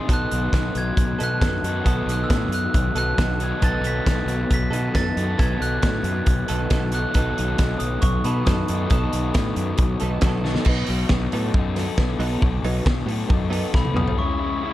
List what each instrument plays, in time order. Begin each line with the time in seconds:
0.08 fingered electric bass B1, overdriven electric guitar B2 D#3 F#3 B3 D#4 A4, clean electric guitar F#3 B3 D#4 A4, kick, closed hi-hat
0.13 glockenspiel F#6
0.31 fingered electric bass B1, closed hi-hat
0.53 fingered electric bass B1, kick, snare, closed hi-hat
0.75 fingered electric bass B1, glockenspiel G#6, closed hi-hat
0.97 fingered electric bass B1, kick, closed hi-hat
1.19 fingered electric bass B2, clean electric guitar F#3 B3 D#4 A4, closed hi-hat
1.24 glockenspiel F#6
1.39 fingered electric bass F#2, clean electric guitar F#3 B3 D#4 A4, kick, snare, closed hi-hat
1.63 fingered electric bass F#2, overdriven electric guitar B2 D#3 F#3 B3 D#4 A4, closed hi-hat
1.84 fingered electric bass B1, overdriven electric guitar B2 D#3 F#3 B3 D#4 A4, clean electric guitar F#3 B3 D#4 A4, glockenspiel D#6, kick, closed hi-hat
2.06 fingered electric bass B1, closed hi-hat
2.12 glockenspiel F#6
2.24 glockenspiel E6
2.30 fingered electric bass A2, kick, snare, closed hi-hat
2.48 fingered electric bass F#2, closed hi-hat
2.54 glockenspiel F#6
2.74 fingered electric bass B1, kick, closed hi-hat
2.95 fingered electric bass B1, clean electric guitar F#3 B3 D#4 A4, glockenspiel F#6, closed hi-hat
3.17 fingered electric bass B1, clean electric guitar F#3 B3 D#4 A4, kick, snare, closed hi-hat
3.40 overdriven electric guitar B2 D#3 F#3 B3 D#4 A4, glockenspiel G#6, closed hi-hat
3.62 fingered electric bass B1, overdriven electric guitar B2 D#3 F#3 B3 D#4 A4, clean electric guitar F#3 B3 D#4 A4, glockenspiel A6, kick, closed hi-hat
3.81 fingered electric bass B1, closed hi-hat
3.87 glockenspiel B6
4.06 fingered electric bass B1, kick, snare, closed hi-hat
4.26 fingered electric bass B1, closed hi-hat
4.51 fingered electric bass B1, glockenspiel B6, kick, closed hi-hat
4.70 fingered electric bass B2, clean electric guitar F#3 B3 D#4 A4, closed hi-hat
4.92 fingered electric bass F#2, clean electric guitar F#3 B3 D#4 A4, glockenspiel A6, kick, snare, closed hi-hat
5.17 fingered electric bass F#2, overdriven electric guitar B2 D#3 F#3 B3 D#4 A4, closed hi-hat
5.38 fingered electric bass B1, overdriven electric guitar B2 D#3 F#3 B3 D#4, clean electric guitar F#3 B3 D#4 A4, glockenspiel G#6, kick, closed hi-hat
5.42 overdriven electric guitar A4
5.61 fingered electric bass B1, glockenspiel F#6, closed hi-hat
5.82 fingered electric bass A2, kick, snare, closed hi-hat
6.03 fingered electric bass F#2, closed hi-hat
6.26 fingered electric bass B1, kick, closed hi-hat
6.48 fingered electric bass B1, clean electric guitar F#3 B3 D#4 A4, closed hi-hat
6.70 fingered electric bass B1, clean electric guitar F#3 B3 D#4 A4, kick, snare, closed hi-hat
6.92 overdriven electric guitar B2 D#3 F#3 B3 D#4 A4, glockenspiel F#6, closed hi-hat
7.14 fingered electric bass B1, overdriven electric guitar B2 D#3 F#3 B3 D#4 A4, clean electric guitar F#3 B3 D#4 A4, kick, closed hi-hat
7.38 fingered electric bass B1, closed hi-hat
7.58 fingered electric bass B1, kick, snare, closed hi-hat
7.79 fingered electric bass B1, glockenspiel D#6, closed hi-hat
8.01 fingered electric bass B1, glockenspiel C#6, kick, closed hi-hat
8.24 fingered electric bass B2, clean electric guitar F#3 B3 D#4 A4, glockenspiel B5, closed hi-hat
8.45 fingered electric bass F#2, clean electric guitar F#3 B3 D#4 A4, glockenspiel D#6, kick, snare, closed hi-hat
8.68 fingered electric bass F#2, overdriven electric guitar B2 D#3 F#3 B3 D#4 A4, closed hi-hat
8.90 fingered electric bass B1, overdriven electric guitar B2 D#3 F#3 B3 D#4 A4, clean electric guitar F#3 B3 D#4 A4, glockenspiel D#6, kick, closed hi-hat
9.13 fingered electric bass B1, closed hi-hat
9.34 fingered electric bass A2, kick, snare, closed hi-hat
9.56 fingered electric bass F#2, closed hi-hat
9.78 fingered electric bass B1, kick, closed hi-hat
10.00 fingered electric bass B1, clean electric guitar F#3 B3 D#4 A4, closed hi-hat
10.21 fingered electric bass B1, clean electric guitar F#3 B3, kick, snare, closed hi-hat
10.26 clean electric guitar D#4 A4
10.44 overdriven electric guitar B2 D#3 F#3 B3 D#4 A4, snare
10.55 snare
10.65 fingered electric bass B1, overdriven electric guitar B2, clean electric guitar F#3 B3 D#4, kick, crash
10.87 fingered electric bass B1, overdriven electric guitar F#3, clean electric guitar F#3 B3, open hi-hat
11.09 fingered electric bass B1, clean electric guitar F#3 B3, overdriven electric guitar B3, kick, snare
11.32 fingered electric bass A2, clean electric guitar F#3 B3 D#4, overdriven electric guitar A4, open hi-hat
11.54 fingered electric bass F#2, clean electric guitar F#3, overdriven electric guitar D#4, kick
11.76 clean electric guitar F#3 B3, overdriven electric guitar A4, snare, open hi-hat
11.98 fingered electric bass B1, clean electric guitar F#3 B3, overdriven electric guitar B3, kick, snare
12.19 fingered electric bass B1, clean electric guitar F#3 B3 D#4, overdriven electric guitar A4, open hi-hat
12.41 fingered electric bass B1, overdriven electric guitar B2, clean electric guitar F#3 B3, kick
12.63 fingered electric bass B1, clean electric guitar F#3 B3 D#4, overdriven electric guitar F#3, open hi-hat
12.86 fingered electric bass B1, clean electric guitar F#3 B3, overdriven electric guitar B3, kick, snare
13.06 fingered electric bass A2, clean electric guitar F#3 B3, overdriven electric guitar A4, open hi-hat
13.28 fingered electric bass F#2, clean electric guitar F#3 B3, overdriven electric guitar D#4, kick
13.50 clean electric guitar F#3 B3 D#4, overdriven electric guitar A4, open hi-hat
13.71 fingered electric bass B1, clean electric guitar F#3 B3, overdriven electric guitar B3, glockenspiel B5, kick, snare
13.85 high tom
13.93 fingered electric bass B1, clean electric guitar F#3 B3, overdriven electric guitar A4, glockenspiel D#6, mid tom
14.07 floor tom
14.16 overdriven electric guitar C#3 G#3 C#4 E4, transistor combo organ G#4 C#5 E5 B5, glockenspiel C#6
14.41 overdriven electric guitar G#3 C#4 E4
14.62 overdriven electric guitar C#3 G#3 C#4 E4